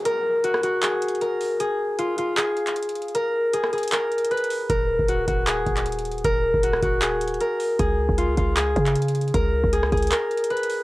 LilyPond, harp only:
\new Staff \with { instrumentName = "Harp" } { \time 4/4 \key ees \minor \tempo 4 = 155 bes'4 ges'8 ges'8 aes'4 bes'4 | aes'4 f'8 f'8 aes'2 | bes'4 aes'8 aes'8 bes'4 ces''4 | bes'4 ges'8 ges'8 aes'2 |
bes'4 ges'8 ges'8 aes'4 bes'4 | aes'4 f'8 f'8 aes'2 | bes'4 aes'8 aes'8 bes'4 ces''4 | }